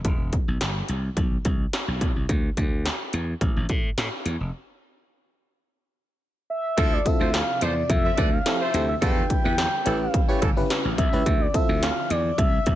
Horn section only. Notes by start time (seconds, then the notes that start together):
6.77 F3 E4 A4
7.20 A3 F4 C5
7.61 A3 F4 C5
8.04 C4 A4 E5
8.17 D4 B4 D5
8.60 A3 F4 C5
9.02 A3 F4 A4
9.44 G3 E4 B4
9.85 E3 C#4 A4
10.29 A3 G4 C#5
10.42 E3 C#4 A4